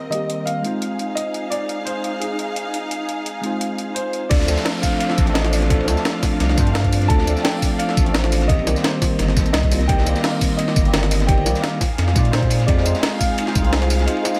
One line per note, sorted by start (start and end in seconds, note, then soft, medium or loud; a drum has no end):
0.00 0.10 A#3 medium
0.00 0.11 C4 medium
0.00 0.61 C4 medium
0.00 0.12 G4 medium
0.00 0.61 A#4 medium
0.00 0.61 D#5 medium
0.09 0.61 D#3 medium
0.09 0.62 G3 medium
0.09 0.63 A#3 medium
0.09 0.47 D#5 loud
0.09 closed hi-hat medium
0.13 0.62 C4 medium
0.13 0.64 G4 medium
0.30 closed hi-hat medium
0.45 1.12 F5 medium
0.45 closed hi-hat medium
0.62 3.40 G#3 medium
0.62 3.41 C4 medium
0.62 3.42 D#4 medium
0.62 4.27 D#4 medium
0.62 3.42 F4 medium
0.62 4.27 G#4 medium
0.62 4.27 F5 medium
0.62 closed hi-hat medium
0.67 3.43 C5 medium
0.82 closed hi-hat medium
0.99 closed hi-hat medium
1.15 1.52 D#5 medium
1.15 closed hi-hat medium
1.34 closed hi-hat medium
1.50 1.83 D5 loud
1.50 closed hi-hat medium
1.69 closed hi-hat medium
1.85 2.22 C5 medium
1.85 closed hi-hat medium
2.04 closed hi-hat medium
2.20 3.91 G#4 medium
2.20 closed hi-hat medium
2.39 closed hi-hat medium
2.56 closed hi-hat medium
2.74 closed hi-hat medium
2.91 closed hi-hat medium
3.09 closed hi-hat medium
3.26 closed hi-hat medium
3.41 4.28 G#3 medium
3.41 4.28 C4 medium
3.41 4.29 D#4 medium
3.41 4.29 F4 medium
3.41 closed hi-hat medium
3.46 4.30 C5 medium
3.61 closed hi-hat medium
3.78 closed hi-hat medium
3.94 4.31 C5 medium
3.94 closed hi-hat medium
4.13 closed hi-hat medium
4.29 4.47 D2 loud
4.29 4.44 F3 medium
4.29 4.46 A3 medium
4.29 4.46 C4 medium
4.29 8.45 D4 medium
4.29 4.47 D4 medium
4.29 4.47 A4 loud
4.29 6.38 C5 medium
4.29 4.84 D5 loud
4.29 8.45 F5 medium
4.29 kick loud
4.29 closed hi-hat loud
4.29 crash loud
4.29 ride medium
4.29 downlifter medium
4.40 snare medium
4.45 4.56 D2 medium
4.45 5.06 F3 medium
4.45 5.07 A3 medium
4.45 5.08 C4 medium
4.45 5.08 D4 medium
4.45 closed hi-hat medium
4.45 ride medium
4.45 tambourine medium
4.51 5.09 A4 loud
4.57 snare medium
4.57 tambourine soft
4.65 snare loud
4.65 closed hi-hat loud
4.65 open hi-hat medium
4.82 4.97 F5 loud
4.82 kick medium
4.82 open hi-hat medium
4.82 ride medium
4.82 tambourine medium
4.99 5.36 F5 loud
4.99 closed hi-hat loud
4.99 ride medium
5.08 5.23 F3 medium
5.08 5.25 A3 medium
5.08 5.25 C4 medium
5.08 5.25 D4 medium
5.08 5.26 A4 medium
5.08 snare soft
5.18 5.89 A1 loud
5.18 kick loud
5.18 closed hi-hat medium
5.18 ride medium
5.18 tambourine medium
5.25 5.67 F3 medium
5.25 5.68 A3 medium
5.25 5.68 C4 medium
5.25 5.69 D4 medium
5.25 closed hi-hat soft
5.30 5.70 A4 loud
5.34 5.51 D#5 loud
5.34 snare loud
5.34 closed hi-hat medium
5.34 ride medium
5.45 snare soft
5.45 snare medium
5.45 closed hi-hat soft
5.52 6.01 D5 medium
5.52 snare soft
5.52 open hi-hat medium
5.52 ride medium
5.52 tambourine medium
5.62 snare medium
5.62 closed hi-hat soft
5.69 5.84 F3 medium
5.69 5.85 A3 medium
5.69 5.86 C4 medium
5.69 5.86 D4 medium
5.69 5.86 A4 loud
5.69 kick loud
5.69 closed hi-hat loud
5.69 ride medium
5.80 ride soft
5.85 5.96 D2 medium
5.85 6.54 F3 medium
5.85 6.55 A3 medium
5.85 6.56 C4 medium
5.85 6.57 D4 medium
5.85 snare soft
5.85 closed hi-hat medium
5.85 ride medium
5.85 tambourine medium
5.90 6.57 A4 loud
5.97 snare soft
5.97 tambourine soft
6.05 snare loud
6.05 closed hi-hat medium
6.05 ride medium
6.22 kick medium
6.22 snare soft
6.22 open hi-hat medium
6.22 ride medium
6.22 tambourine medium
6.40 6.56 C2 medium
6.40 8.47 D5 medium
6.40 snare soft
6.40 closed hi-hat loud
6.40 ride medium
6.49 snare soft
6.55 6.73 G2 loud
6.55 7.07 F3 loud
6.55 7.07 A3 medium
6.55 7.08 C4 medium
6.55 kick loud
6.55 snare medium
6.55 closed hi-hat medium
6.55 ride medium
6.55 tambourine medium
6.59 7.09 D4 medium
6.59 7.09 C5 loud
6.67 closed hi-hat soft
6.74 7.08 G2 loud
6.74 7.10 F5 loud
6.74 snare loud
6.74 closed hi-hat medium
6.74 ride medium
6.84 kick medium
6.84 closed hi-hat soft
6.93 open hi-hat medium
6.93 ride medium
6.93 tambourine medium
7.02 snare soft
7.02 closed hi-hat soft
7.08 7.26 D2 loud
7.08 7.24 F3 loud
7.08 7.25 A3 medium
7.08 7.25 C4 medium
7.08 7.26 D4 medium
7.08 7.26 A4 loud
7.08 7.41 A5 loud
7.08 kick loud
7.08 closed hi-hat medium
7.08 ride medium
7.18 snare medium
7.25 7.36 D2 medium
7.25 7.85 F3 medium
7.25 7.86 A3 medium
7.25 7.87 C4 medium
7.25 7.87 D4 medium
7.25 closed hi-hat medium
7.25 ride medium
7.25 tambourine medium
7.30 7.88 A4 loud
7.37 snare soft
7.37 tambourine soft
7.43 7.80 G5 loud
7.43 snare loud
7.43 closed hi-hat medium
7.43 open hi-hat medium
7.62 kick medium
7.62 open hi-hat medium
7.62 ride medium
7.62 tambourine medium
7.78 8.51 F5 loud
7.78 closed hi-hat medium
7.78 ride medium
7.88 8.02 F3 medium
7.88 8.04 A3 medium
7.88 8.04 C4 medium
7.88 8.04 D4 medium
7.88 8.05 A4 medium
7.88 snare soft
7.97 8.68 A1 loud
7.97 kick loud
7.97 closed hi-hat medium
7.97 ride medium
7.97 tambourine medium
8.04 8.46 F3 medium
8.04 8.47 A3 medium
8.04 8.47 C4 medium
8.04 8.48 D4 medium
8.04 closed hi-hat soft
8.09 8.49 A4 loud
8.14 snare loud
8.14 closed hi-hat medium
8.14 ride medium
8.24 snare soft
8.24 snare medium
8.24 closed hi-hat soft
8.32 snare soft
8.32 open hi-hat medium
8.32 ride medium
8.32 tambourine medium
8.41 snare medium
8.41 closed hi-hat soft
8.48 8.63 D#3 medium
8.48 8.65 G3 medium
8.48 8.65 A#3 medium
8.48 11.78 A#3 medium
8.48 11.78 C4 medium
8.48 8.65 C4 medium
8.48 8.66 G4 loud
8.48 8.81 D#5 loud
8.48 11.78 D#5 medium
8.48 kick loud
8.48 closed hi-hat medium
8.48 ride medium
8.59 ride soft
8.64 8.75 C2 medium
8.64 9.34 D#3 medium
8.64 9.34 G3 medium
8.64 9.35 A#3 medium
8.64 9.36 C4 medium
8.64 snare soft
8.64 closed hi-hat medium
8.64 ride medium
8.64 tambourine medium
8.70 9.36 G4 loud
8.76 snare medium
8.76 tambourine soft
8.83 9.55 C5 loud
8.83 snare loud
8.83 closed hi-hat medium
8.83 ride medium
9.01 kick medium
9.01 snare soft
9.01 open hi-hat medium
9.01 ride medium
9.01 tambourine medium
9.19 9.38 G1 medium
9.19 snare soft
9.19 closed hi-hat medium
9.19 ride medium
9.28 snare soft
9.35 9.45 C2 loud
9.35 9.69 D#3 medium
9.35 9.69 G3 medium
9.35 9.70 A#3 medium
9.35 9.70 C4 medium
9.35 9.70 A4 medium
9.35 kick loud
9.35 snare medium
9.35 closed hi-hat medium
9.35 ride medium
9.35 tambourine medium
9.46 closed hi-hat soft
9.46 tambourine soft
9.53 9.88 C2 loud
9.53 9.89 D#5 loud
9.53 snare loud
9.53 closed hi-hat medium
9.53 ride medium
9.63 kick medium
9.63 closed hi-hat soft
9.70 9.80 D#3 medium
9.70 9.80 G3 medium
9.70 9.81 A#3 medium
9.70 9.81 C4 medium
9.70 9.81 F4 medium
9.70 open hi-hat medium
9.70 ride medium
9.70 tambourine medium
9.81 snare soft
9.81 closed hi-hat soft
9.87 10.05 C2 loud
9.87 10.03 D#3 loud
9.87 10.04 G3 medium
9.87 10.04 A#3 medium
9.87 10.05 C4 medium
9.87 10.05 G4 loud
9.87 10.24 G5 loud
9.87 kick loud
9.87 closed hi-hat medium
9.87 ride medium
9.98 snare medium
10.04 10.15 C2 medium
10.04 10.64 D#3 medium
10.04 10.65 G3 medium
10.04 10.66 A#3 medium
10.04 10.66 C4 medium
10.04 closed hi-hat medium
10.04 ride medium
10.04 tambourine medium
10.09 10.67 G4 loud
10.15 snare medium
10.15 tambourine soft
10.22 10.59 F5 loud
10.22 snare loud
10.22 closed hi-hat medium
10.22 open hi-hat medium
10.41 kick medium
10.41 open hi-hat medium
10.41 ride medium
10.41 tambourine medium
10.57 11.24 D#5 loud
10.57 closed hi-hat medium
10.57 ride medium
10.67 10.81 D#3 medium
10.67 10.83 G3 medium
10.67 10.83 A#3 medium
10.67 10.84 C4 medium
10.67 10.84 G4 medium
10.67 snare soft
10.76 11.47 G1 loud
10.76 kick loud
10.76 closed hi-hat medium
10.76 ride medium
10.76 tambourine medium
10.83 11.25 D#3 medium
10.83 11.26 G3 medium
10.83 11.26 A#3 medium
10.83 11.27 C4 medium
10.83 closed hi-hat soft
10.88 11.28 G4 loud
10.93 snare loud
10.93 closed hi-hat medium
10.93 ride medium
11.03 snare soft
11.03 snare medium
11.03 closed hi-hat soft
11.11 snare soft
11.11 open hi-hat medium
11.11 ride medium
11.11 tambourine medium
11.20 snare medium
11.20 closed hi-hat soft
11.27 11.43 D#3 medium
11.27 11.44 G3 medium
11.27 11.44 A#3 medium
11.27 11.44 C4 medium
11.27 11.45 G4 loud
11.27 11.64 G5 loud
11.27 kick loud
11.27 closed hi-hat medium
11.27 ride medium
11.37 ride soft
11.45 11.54 C2 medium
11.45 11.79 D#3 medium
11.45 11.80 G3 medium
11.45 11.80 A#3 medium
11.45 11.80 C4 medium
11.45 11.81 G4 loud
11.45 snare soft
11.45 closed hi-hat medium
11.45 ride medium
11.45 tambourine medium
11.55 snare medium
11.55 tambourine soft
11.62 12.35 F5 loud
11.62 snare loud
11.62 closed hi-hat medium
11.62 ride medium
11.81 14.40 D#4 medium
11.81 14.40 G#4 medium
11.81 14.40 F5 medium
11.81 kick medium
11.81 snare soft
11.81 open hi-hat medium
11.81 ride medium
11.81 tambourine medium
11.98 12.14 F2 medium
11.98 snare soft
11.98 closed hi-hat medium
11.98 ride medium
12.07 snare soft
12.13 12.32 A#2 loud
12.13 12.65 G#3 medium
12.13 12.65 C4 medium
12.13 12.66 D#4 medium
12.13 kick loud
12.13 snare medium
12.13 closed hi-hat medium
12.13 ride medium
12.13 tambourine medium
12.17 12.67 F4 medium
12.17 12.67 D5 loud
12.25 closed hi-hat soft
12.31 12.67 A#2 loud
12.31 12.68 C5 medium
12.31 snare loud
12.31 closed hi-hat medium
12.31 ride medium
12.42 kick medium
12.42 closed hi-hat soft
12.50 open hi-hat medium
12.50 ride medium
12.50 tambourine medium
12.60 snare soft
12.60 closed hi-hat soft
12.66 12.84 F2 loud
12.66 12.82 G#3 medium
12.66 12.83 C4 medium
12.66 12.83 D#4 medium
12.66 12.84 F4 medium
12.66 12.84 C5 loud
12.66 13.00 D5 loud
12.66 kick loud
12.66 closed hi-hat medium
12.66 ride medium
12.78 snare soft
12.83 12.94 F2 medium
12.83 13.44 G#3 loud
12.83 13.44 C4 medium
12.83 13.45 D#4 medium
12.83 13.46 F4 medium
12.83 closed hi-hat medium
12.83 ride medium
12.83 tambourine medium
12.88 13.46 C5 loud
12.95 snare medium
12.95 tambourine soft
13.01 13.18 D#5 loud
13.01 snare loud
13.01 closed hi-hat loud
13.01 open hi-hat medium
13.19 14.40 F5 loud
13.19 kick medium
13.19 open hi-hat medium
13.19 ride medium
13.19 tambourine medium
13.38 closed hi-hat loud
13.38 ride medium
13.46 13.61 G#3 medium
13.46 13.62 C4 medium
13.46 13.62 D#4 medium
13.46 13.63 F4 medium
13.46 13.63 C5 medium
13.46 snare soft
13.55 14.08 C2 loud
13.55 kick loud
13.55 closed hi-hat medium
13.55 ride medium
13.55 tambourine medium
13.62 14.04 G#3 medium
13.62 14.05 C4 medium
13.62 14.06 D#4 medium
13.62 14.06 F4 medium
13.62 closed hi-hat soft
13.67 14.07 C5 loud
13.73 snare loud
13.73 closed hi-hat loud
13.73 ride medium
13.82 snare soft
13.82 snare medium
13.82 closed hi-hat soft
13.90 snare soft
13.90 open hi-hat medium
13.90 ride medium
13.90 tambourine medium
13.99 snare medium
13.99 closed hi-hat soft
14.06 14.21 G#3 medium
14.06 14.23 C4 medium
14.06 14.23 D#4 medium
14.06 14.23 F4 medium
14.06 14.24 C5 loud
14.06 closed hi-hat loud
14.06 ride medium
14.17 ride soft
14.22 14.40 G#3 medium
14.22 14.40 C4 medium
14.22 14.40 D#4 medium
14.22 14.40 F4 medium
14.22 snare soft
14.22 closed hi-hat medium
14.22 ride medium
14.22 tambourine medium
14.28 14.40 C5 loud
14.34 snare soft
14.34 tambourine soft